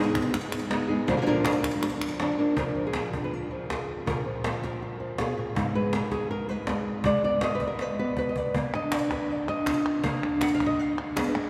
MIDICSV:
0, 0, Header, 1, 5, 480
1, 0, Start_track
1, 0, Tempo, 373599
1, 1389, Time_signature, 4, 2, 24, 8
1, 14773, End_track
2, 0, Start_track
2, 0, Title_t, "Nylon-string guitar"
2, 0, Program_c, 0, 24
2, 0, Note_on_c, 0, 56, 45
2, 0, Note_on_c, 0, 59, 48
2, 0, Note_on_c, 0, 63, 55
2, 0, Note_on_c, 0, 68, 55
2, 423, Note_off_c, 0, 68, 0
2, 426, Note_off_c, 0, 56, 0
2, 427, Note_off_c, 0, 63, 0
2, 431, Note_off_c, 0, 59, 0
2, 892, Note_on_c, 0, 56, 57
2, 899, Note_on_c, 0, 59, 56
2, 912, Note_on_c, 0, 63, 63
2, 919, Note_on_c, 0, 68, 61
2, 1118, Note_off_c, 0, 68, 0
2, 1130, Note_off_c, 0, 56, 0
2, 1133, Note_on_c, 0, 68, 60
2, 1134, Note_off_c, 0, 59, 0
2, 1134, Note_off_c, 0, 63, 0
2, 1149, Note_on_c, 0, 63, 52
2, 1158, Note_on_c, 0, 59, 48
2, 1159, Note_on_c, 0, 56, 53
2, 1371, Note_off_c, 0, 68, 0
2, 1377, Note_on_c, 0, 46, 79
2, 1379, Note_off_c, 0, 63, 0
2, 1381, Note_off_c, 0, 56, 0
2, 1381, Note_on_c, 0, 50, 79
2, 1383, Note_off_c, 0, 59, 0
2, 1386, Note_on_c, 0, 53, 81
2, 1391, Note_on_c, 0, 58, 83
2, 1403, Note_on_c, 0, 62, 88
2, 1403, Note_on_c, 0, 70, 91
2, 1488, Note_off_c, 0, 50, 0
2, 1491, Note_off_c, 0, 53, 0
2, 1497, Note_off_c, 0, 58, 0
2, 1500, Note_off_c, 0, 62, 0
2, 1503, Note_on_c, 0, 50, 52
2, 1507, Note_off_c, 0, 70, 0
2, 1507, Note_on_c, 0, 53, 53
2, 1512, Note_on_c, 0, 58, 58
2, 1515, Note_on_c, 0, 62, 56
2, 1522, Note_on_c, 0, 70, 60
2, 1548, Note_off_c, 0, 50, 0
2, 1551, Note_off_c, 0, 53, 0
2, 1556, Note_off_c, 0, 58, 0
2, 1558, Note_off_c, 0, 62, 0
2, 1563, Note_on_c, 0, 50, 68
2, 1566, Note_on_c, 0, 53, 73
2, 1567, Note_off_c, 0, 70, 0
2, 1571, Note_on_c, 0, 58, 75
2, 1573, Note_on_c, 0, 62, 69
2, 1582, Note_on_c, 0, 70, 74
2, 1603, Note_off_c, 0, 46, 0
2, 1610, Note_off_c, 0, 58, 0
2, 1611, Note_off_c, 0, 50, 0
2, 1613, Note_off_c, 0, 53, 0
2, 1614, Note_off_c, 0, 62, 0
2, 1618, Note_on_c, 0, 46, 75
2, 1621, Note_off_c, 0, 70, 0
2, 1626, Note_on_c, 0, 58, 89
2, 1627, Note_on_c, 0, 50, 81
2, 1629, Note_on_c, 0, 53, 82
2, 1630, Note_on_c, 0, 62, 87
2, 1637, Note_on_c, 0, 70, 89
2, 1850, Note_off_c, 0, 70, 0
2, 1852, Note_off_c, 0, 46, 0
2, 1856, Note_off_c, 0, 58, 0
2, 1857, Note_off_c, 0, 50, 0
2, 1858, Note_off_c, 0, 53, 0
2, 1858, Note_off_c, 0, 62, 0
2, 1874, Note_on_c, 0, 62, 49
2, 1878, Note_on_c, 0, 58, 50
2, 1891, Note_on_c, 0, 53, 46
2, 2331, Note_off_c, 0, 53, 0
2, 2332, Note_off_c, 0, 58, 0
2, 2336, Note_off_c, 0, 62, 0
2, 2819, Note_on_c, 0, 53, 54
2, 2836, Note_on_c, 0, 58, 51
2, 2845, Note_on_c, 0, 62, 59
2, 2851, Note_on_c, 0, 70, 58
2, 3048, Note_off_c, 0, 70, 0
2, 3051, Note_off_c, 0, 53, 0
2, 3052, Note_off_c, 0, 62, 0
2, 3060, Note_off_c, 0, 58, 0
2, 3063, Note_on_c, 0, 70, 55
2, 3068, Note_on_c, 0, 62, 56
2, 3079, Note_on_c, 0, 58, 52
2, 3090, Note_on_c, 0, 53, 51
2, 3293, Note_off_c, 0, 70, 0
2, 3294, Note_off_c, 0, 53, 0
2, 3295, Note_off_c, 0, 62, 0
2, 3297, Note_on_c, 0, 46, 66
2, 3301, Note_off_c, 0, 58, 0
2, 3309, Note_on_c, 0, 53, 43
2, 3315, Note_on_c, 0, 62, 44
2, 3318, Note_on_c, 0, 70, 77
2, 3327, Note_on_c, 0, 65, 45
2, 3530, Note_off_c, 0, 53, 0
2, 3535, Note_on_c, 0, 53, 54
2, 3678, Note_off_c, 0, 65, 0
2, 3683, Note_on_c, 0, 68, 65
2, 3780, Note_off_c, 0, 70, 0
2, 3795, Note_on_c, 0, 70, 77
2, 4024, Note_off_c, 0, 68, 0
2, 4029, Note_on_c, 0, 65, 43
2, 4148, Note_off_c, 0, 70, 0
2, 4164, Note_on_c, 0, 71, 66
2, 4284, Note_off_c, 0, 71, 0
2, 4284, Note_on_c, 0, 70, 75
2, 4489, Note_off_c, 0, 53, 0
2, 4505, Note_on_c, 0, 53, 51
2, 4744, Note_off_c, 0, 65, 0
2, 4770, Note_on_c, 0, 68, 74
2, 5189, Note_off_c, 0, 46, 0
2, 5198, Note_off_c, 0, 62, 0
2, 5220, Note_on_c, 0, 46, 67
2, 5222, Note_off_c, 0, 70, 0
2, 5237, Note_on_c, 0, 70, 80
2, 5444, Note_off_c, 0, 53, 0
2, 5459, Note_on_c, 0, 53, 51
2, 5715, Note_off_c, 0, 68, 0
2, 5948, Note_off_c, 0, 70, 0
2, 5962, Note_on_c, 0, 70, 70
2, 6194, Note_on_c, 0, 65, 46
2, 6406, Note_off_c, 0, 53, 0
2, 6422, Note_on_c, 0, 53, 55
2, 6660, Note_off_c, 0, 46, 0
2, 6667, Note_off_c, 0, 65, 0
2, 6667, Note_on_c, 0, 47, 57
2, 6675, Note_on_c, 0, 68, 74
2, 6884, Note_off_c, 0, 70, 0
2, 6899, Note_on_c, 0, 70, 85
2, 6900, Note_off_c, 0, 47, 0
2, 6905, Note_on_c, 0, 46, 60
2, 7127, Note_off_c, 0, 46, 0
2, 7132, Note_on_c, 0, 44, 65
2, 7138, Note_off_c, 0, 53, 0
2, 7143, Note_on_c, 0, 56, 43
2, 7148, Note_off_c, 0, 68, 0
2, 7151, Note_on_c, 0, 59, 44
2, 7157, Note_on_c, 0, 63, 47
2, 7379, Note_off_c, 0, 56, 0
2, 7380, Note_off_c, 0, 70, 0
2, 7384, Note_on_c, 0, 56, 58
2, 7392, Note_on_c, 0, 71, 77
2, 7623, Note_off_c, 0, 71, 0
2, 7623, Note_on_c, 0, 70, 86
2, 7851, Note_off_c, 0, 70, 0
2, 7857, Note_on_c, 0, 68, 74
2, 8097, Note_off_c, 0, 68, 0
2, 8102, Note_on_c, 0, 70, 85
2, 8329, Note_off_c, 0, 56, 0
2, 8333, Note_off_c, 0, 70, 0
2, 8333, Note_on_c, 0, 71, 87
2, 8345, Note_on_c, 0, 56, 54
2, 9029, Note_off_c, 0, 44, 0
2, 9035, Note_off_c, 0, 56, 0
2, 9038, Note_off_c, 0, 59, 0
2, 9041, Note_off_c, 0, 63, 0
2, 9058, Note_off_c, 0, 71, 0
2, 9063, Note_on_c, 0, 56, 66
2, 9063, Note_on_c, 0, 74, 93
2, 9290, Note_off_c, 0, 74, 0
2, 9298, Note_on_c, 0, 59, 56
2, 9306, Note_on_c, 0, 74, 76
2, 9537, Note_off_c, 0, 74, 0
2, 9542, Note_on_c, 0, 75, 90
2, 9700, Note_on_c, 0, 71, 83
2, 9853, Note_off_c, 0, 71, 0
2, 9859, Note_on_c, 0, 70, 75
2, 10024, Note_off_c, 0, 70, 0
2, 10024, Note_on_c, 0, 71, 86
2, 10183, Note_off_c, 0, 75, 0
2, 10249, Note_off_c, 0, 59, 0
2, 10254, Note_off_c, 0, 71, 0
2, 10265, Note_on_c, 0, 59, 57
2, 10272, Note_on_c, 0, 71, 86
2, 10500, Note_off_c, 0, 71, 0
2, 10515, Note_on_c, 0, 71, 88
2, 10652, Note_on_c, 0, 75, 66
2, 10757, Note_off_c, 0, 75, 0
2, 10757, Note_on_c, 0, 74, 96
2, 10957, Note_off_c, 0, 56, 0
2, 10957, Note_off_c, 0, 59, 0
2, 10983, Note_on_c, 0, 58, 62
2, 10990, Note_off_c, 0, 71, 0
2, 11229, Note_on_c, 0, 62, 59
2, 11231, Note_off_c, 0, 74, 0
2, 11241, Note_on_c, 0, 75, 87
2, 11471, Note_off_c, 0, 75, 0
2, 11471, Note_on_c, 0, 74, 86
2, 11711, Note_on_c, 0, 71, 77
2, 11932, Note_off_c, 0, 74, 0
2, 11947, Note_on_c, 0, 74, 93
2, 11949, Note_off_c, 0, 71, 0
2, 12181, Note_off_c, 0, 62, 0
2, 12184, Note_off_c, 0, 74, 0
2, 12189, Note_on_c, 0, 75, 97
2, 12197, Note_on_c, 0, 62, 58
2, 12449, Note_on_c, 0, 65, 44
2, 12879, Note_off_c, 0, 58, 0
2, 12885, Note_off_c, 0, 62, 0
2, 12891, Note_off_c, 0, 65, 0
2, 12896, Note_off_c, 0, 75, 0
2, 12901, Note_on_c, 0, 77, 104
2, 12910, Note_on_c, 0, 58, 70
2, 13160, Note_on_c, 0, 62, 60
2, 13386, Note_off_c, 0, 77, 0
2, 13391, Note_on_c, 0, 78, 92
2, 13544, Note_off_c, 0, 78, 0
2, 13549, Note_on_c, 0, 77, 101
2, 13696, Note_off_c, 0, 77, 0
2, 13701, Note_on_c, 0, 75, 94
2, 13866, Note_off_c, 0, 75, 0
2, 13866, Note_on_c, 0, 77, 97
2, 14101, Note_off_c, 0, 62, 0
2, 14117, Note_on_c, 0, 62, 58
2, 14339, Note_on_c, 0, 68, 90
2, 14355, Note_off_c, 0, 62, 0
2, 14365, Note_on_c, 0, 59, 59
2, 14491, Note_on_c, 0, 71, 73
2, 14573, Note_off_c, 0, 58, 0
2, 14575, Note_off_c, 0, 71, 0
2, 14575, Note_on_c, 0, 70, 103
2, 14583, Note_off_c, 0, 59, 0
2, 14589, Note_on_c, 0, 58, 65
2, 14773, Note_off_c, 0, 58, 0
2, 14773, Note_off_c, 0, 68, 0
2, 14773, Note_off_c, 0, 70, 0
2, 14773, Note_off_c, 0, 77, 0
2, 14773, End_track
3, 0, Start_track
3, 0, Title_t, "Cajon"
3, 191, Note_on_c, 9, 36, 73
3, 320, Note_off_c, 9, 36, 0
3, 909, Note_on_c, 9, 38, 94
3, 1037, Note_off_c, 9, 38, 0
3, 1387, Note_on_c, 9, 36, 92
3, 1515, Note_off_c, 9, 36, 0
3, 1637, Note_on_c, 9, 38, 33
3, 1765, Note_off_c, 9, 38, 0
3, 1857, Note_on_c, 9, 38, 107
3, 1986, Note_off_c, 9, 38, 0
3, 2095, Note_on_c, 9, 36, 66
3, 2095, Note_on_c, 9, 38, 29
3, 2223, Note_off_c, 9, 36, 0
3, 2223, Note_off_c, 9, 38, 0
3, 2822, Note_on_c, 9, 38, 96
3, 2950, Note_off_c, 9, 38, 0
3, 3298, Note_on_c, 9, 36, 92
3, 3426, Note_off_c, 9, 36, 0
3, 3770, Note_on_c, 9, 38, 90
3, 3898, Note_off_c, 9, 38, 0
3, 4027, Note_on_c, 9, 36, 69
3, 4155, Note_off_c, 9, 36, 0
3, 4756, Note_on_c, 9, 36, 65
3, 4756, Note_on_c, 9, 38, 86
3, 4884, Note_off_c, 9, 36, 0
3, 4884, Note_off_c, 9, 38, 0
3, 4997, Note_on_c, 9, 38, 26
3, 5125, Note_off_c, 9, 38, 0
3, 5234, Note_on_c, 9, 36, 95
3, 5362, Note_off_c, 9, 36, 0
3, 5709, Note_on_c, 9, 38, 97
3, 5837, Note_off_c, 9, 38, 0
3, 5954, Note_on_c, 9, 36, 68
3, 5954, Note_on_c, 9, 38, 25
3, 6083, Note_off_c, 9, 36, 0
3, 6083, Note_off_c, 9, 38, 0
3, 6661, Note_on_c, 9, 36, 57
3, 6661, Note_on_c, 9, 38, 92
3, 6789, Note_off_c, 9, 36, 0
3, 6789, Note_off_c, 9, 38, 0
3, 7149, Note_on_c, 9, 36, 91
3, 7277, Note_off_c, 9, 36, 0
3, 7617, Note_on_c, 9, 38, 101
3, 7746, Note_off_c, 9, 38, 0
3, 7856, Note_on_c, 9, 36, 68
3, 7856, Note_on_c, 9, 38, 28
3, 7985, Note_off_c, 9, 36, 0
3, 7985, Note_off_c, 9, 38, 0
3, 8569, Note_on_c, 9, 36, 63
3, 8569, Note_on_c, 9, 38, 92
3, 8697, Note_off_c, 9, 36, 0
3, 8697, Note_off_c, 9, 38, 0
3, 9043, Note_on_c, 9, 36, 92
3, 9172, Note_off_c, 9, 36, 0
3, 9523, Note_on_c, 9, 38, 98
3, 9651, Note_off_c, 9, 38, 0
3, 9765, Note_on_c, 9, 36, 70
3, 9765, Note_on_c, 9, 38, 27
3, 9893, Note_off_c, 9, 36, 0
3, 9893, Note_off_c, 9, 38, 0
3, 10007, Note_on_c, 9, 38, 72
3, 10136, Note_off_c, 9, 38, 0
3, 10492, Note_on_c, 9, 36, 63
3, 10620, Note_off_c, 9, 36, 0
3, 10737, Note_on_c, 9, 36, 65
3, 10865, Note_off_c, 9, 36, 0
3, 10978, Note_on_c, 9, 36, 91
3, 11107, Note_off_c, 9, 36, 0
3, 11458, Note_on_c, 9, 38, 98
3, 11587, Note_off_c, 9, 38, 0
3, 11697, Note_on_c, 9, 36, 70
3, 11697, Note_on_c, 9, 38, 26
3, 11825, Note_off_c, 9, 36, 0
3, 11825, Note_off_c, 9, 38, 0
3, 12415, Note_on_c, 9, 36, 65
3, 12415, Note_on_c, 9, 38, 94
3, 12543, Note_off_c, 9, 36, 0
3, 12543, Note_off_c, 9, 38, 0
3, 12894, Note_on_c, 9, 36, 99
3, 13023, Note_off_c, 9, 36, 0
3, 13373, Note_on_c, 9, 38, 99
3, 13502, Note_off_c, 9, 38, 0
3, 13621, Note_on_c, 9, 36, 69
3, 13749, Note_off_c, 9, 36, 0
3, 14346, Note_on_c, 9, 36, 59
3, 14346, Note_on_c, 9, 38, 96
3, 14474, Note_off_c, 9, 36, 0
3, 14474, Note_off_c, 9, 38, 0
3, 14773, End_track
4, 0, Start_track
4, 0, Title_t, "Muted nylon-string guitar strokes"
4, 435, Note_on_c, 9, 29, 75
4, 564, Note_off_c, 9, 29, 0
4, 2341, Note_on_c, 9, 29, 71
4, 2469, Note_off_c, 9, 29, 0
4, 14773, End_track
5, 0, Start_track
5, 0, Title_t, "Drums"
5, 195, Note_on_c, 9, 39, 75
5, 323, Note_off_c, 9, 39, 0
5, 437, Note_on_c, 9, 39, 81
5, 565, Note_off_c, 9, 39, 0
5, 672, Note_on_c, 9, 39, 77
5, 801, Note_off_c, 9, 39, 0
5, 1390, Note_on_c, 9, 39, 49
5, 1519, Note_off_c, 9, 39, 0
5, 1870, Note_on_c, 9, 39, 80
5, 1999, Note_off_c, 9, 39, 0
5, 2110, Note_on_c, 9, 39, 84
5, 2238, Note_off_c, 9, 39, 0
5, 2347, Note_on_c, 9, 39, 73
5, 2476, Note_off_c, 9, 39, 0
5, 2589, Note_on_c, 9, 39, 81
5, 2717, Note_off_c, 9, 39, 0
5, 11457, Note_on_c, 9, 39, 79
5, 11585, Note_off_c, 9, 39, 0
5, 11701, Note_on_c, 9, 39, 42
5, 11830, Note_off_c, 9, 39, 0
5, 12183, Note_on_c, 9, 39, 46
5, 12312, Note_off_c, 9, 39, 0
5, 12423, Note_on_c, 9, 39, 77
5, 12551, Note_off_c, 9, 39, 0
5, 12665, Note_on_c, 9, 39, 50
5, 12794, Note_off_c, 9, 39, 0
5, 13148, Note_on_c, 9, 39, 47
5, 13276, Note_off_c, 9, 39, 0
5, 13381, Note_on_c, 9, 39, 80
5, 13509, Note_off_c, 9, 39, 0
5, 13624, Note_on_c, 9, 39, 46
5, 13752, Note_off_c, 9, 39, 0
5, 14109, Note_on_c, 9, 39, 46
5, 14238, Note_off_c, 9, 39, 0
5, 14350, Note_on_c, 9, 39, 84
5, 14479, Note_off_c, 9, 39, 0
5, 14583, Note_on_c, 9, 39, 49
5, 14712, Note_off_c, 9, 39, 0
5, 14773, End_track
0, 0, End_of_file